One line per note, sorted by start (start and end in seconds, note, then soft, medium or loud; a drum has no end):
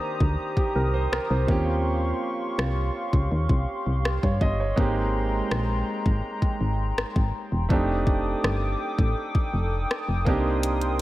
0.00 1.07 D#3 medium
0.00 1.08 A#3 medium
0.00 1.08 C4 medium
0.00 1.09 D4 medium
0.00 0.36 G4 medium
0.00 4.74 G4 medium
0.00 1.46 C5 medium
0.00 1.46 A#5 medium
0.00 1.45 D#6 medium
0.20 0.37 D2 medium
0.20 kick medium
0.57 0.74 G4 medium
0.57 kick medium
0.76 1.08 C2 medium
0.76 0.93 A#4 medium
0.94 1.11 C5 medium
1.12 1.19 C2 soft
1.12 1.29 A#4 medium
1.12 cross-stick loud
1.30 1.46 C2 loud
1.30 1.65 C5 medium
1.47 2.13 D#2 medium
1.47 4.36 F3 medium
1.47 4.37 A#3 medium
1.47 4.37 C4 medium
1.47 4.38 C#4 medium
1.47 4.74 F5 medium
1.47 7.66 C6 medium
1.47 4.74 C#6 medium
1.47 kick loud
1.51 4.38 G4 medium
2.58 2.90 C2 medium
2.58 cross-stick loud
3.13 3.29 C#2 medium
3.13 kick medium
3.32 3.48 D#2 medium
3.49 3.66 C2 medium
3.49 kick medium
3.86 4.19 C2 medium
4.05 cross-stick loud
4.23 4.39 G2 medium
4.23 4.40 C#5 medium
4.23 kick medium
4.41 4.73 G1 loud
4.41 4.59 D#5 medium
4.41 kick medium
4.60 4.94 C#5 medium
4.76 5.42 G#1 loud
4.76 7.65 G#3 medium
4.76 7.68 G#3 medium
4.76 7.66 A#3 medium
4.76 7.67 C4 medium
4.76 7.67 D#4 medium
4.76 11.02 G5 medium
4.76 7.68 A#5 medium
4.76 kick loud
4.80 7.68 G4 medium
5.51 5.83 A#1 medium
5.51 cross-stick loud
6.06 6.22 G#1 medium
6.06 kick medium
6.42 kick medium
6.61 6.93 G#1 medium
6.97 7.05 G#1 soft
6.97 cross-stick loud
7.16 7.32 G#1 medium
7.16 kick medium
7.52 7.68 E1 medium
7.69 8.35 F1 loud
7.69 10.22 A3 medium
7.69 10.22 C4 medium
7.69 10.23 D4 medium
7.69 10.23 D#4 medium
7.69 10.24 A4 medium
7.69 10.24 D6 medium
7.69 11.02 D#6 medium
7.69 kick loud
7.73 10.24 G4 medium
8.07 kick medium
8.44 8.76 G1 medium
8.44 cross-stick loud
8.98 9.15 A1 medium
8.98 kick medium
9.35 kick medium
9.54 9.86 F1 medium
9.91 cross-stick loud
10.08 10.28 F1 medium
10.25 11.02 C2 medium
10.25 11.02 A#3 medium
10.25 11.02 C4 medium
10.25 11.02 D4 medium
10.25 11.02 D#4 medium
10.25 11.02 A#4 medium
10.25 11.02 C6 medium
10.25 kick loud
10.29 11.02 G4 medium
10.63 closed hi-hat medium
10.81 closed hi-hat soft